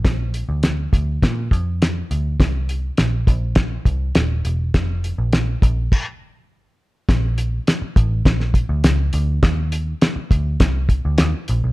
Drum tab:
CC |----------------|----------------|--------x-------|----------------|
HH |x-x-x-x-x-x-x-x-|x-x-x-x-x-x-x-x-|x-x-x-x---------|x-x-x-x-x-x-x-x-|
SD |o---o---o---o---|o---o---o---o---|o---o-----------|o---o---oo--o---|
BD |o-----o-o-o-----|o-----o-o-o-----|o-----o-o-------|o-----o-o-o-----|

CC |----------------|
HH |x-x-x-x-x-x-x-x-|
SD |o---o---o---o---|
BD |o-----o-o-o-----|